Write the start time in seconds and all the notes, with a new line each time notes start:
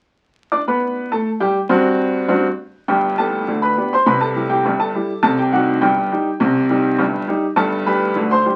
0.52 D4 D5 D6
0.68 B3 B4 B5
1.12 A3 A4 A5
1.40 G3 G4 G5
1.69 G2 C4 D4 F#4
2.28 G2 C4 D4 F#4
2.88 G1 G2 G4 G5
3.18 B3 D4 G4 A4 A5
3.48 D2 D3
3.62 B4 B5
3.77 B3 D4 G4
3.93 C5 C6
4.06 C2 C3 B4 B5
4.21 A4 A5
4.36 G3 E4 G4
4.50 G4 G5
4.65 G1 G2
4.80 A4 A5
4.95 G3 E4 G4
5.23 C2 C3 A4 A5
5.39 G4 G5
5.52 G3 D#4 F#4 G4 F#5
5.81 G1 G2 G4 G5
6.12 G3 D#4 G4
6.40 C2 C3
6.70 G3 D#4 G4
6.98 G1 G2
7.28 G3 D#4 G4
7.56 G1 G2 A4 A5
7.86 G3 D4 G4 B4 B5
8.16 D2 D3
8.31 C5 C6
8.46 G3 D4 G4